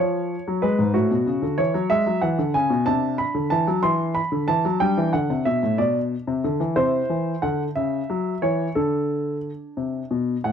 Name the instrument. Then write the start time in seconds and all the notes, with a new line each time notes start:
grand piano
0.00 F3 C#5
0.48 F#3
0.62 G#3 B4
0.79 G#2
0.94 A2 F#4
1.11 B2
1.26 C#3
1.42 D3
1.58 E3 C#5
1.74 F#3
1.90 G#3 E5
2.06 F#3
2.22 E3 F#5
2.39 D3
2.54 C#3 G#5
2.70 B2
2.86 C3 D4 A5
3.18 B5
3.35 D3
3.50 E3 A5
3.67 F#3
3.83 E3 C6
4.15 B5
4.32 D3
4.48 E3 A5
4.65 F#3
4.80 G3 D4 G5
4.97 E3
5.13 D3 F#5
5.30 C3
5.45 B2 E5
5.63 A2
5.78 B2 D5
6.27 C3
6.44 D3
6.60 E3
6.76 C3 E4 C5
7.10 E3
7.42 D3 F#5
7.76 C#3 E5
8.10 F#3
8.42 E3 C#5
8.75 D3 D4 A4
9.77 C3
10.11 B2
10.44 A2 F#5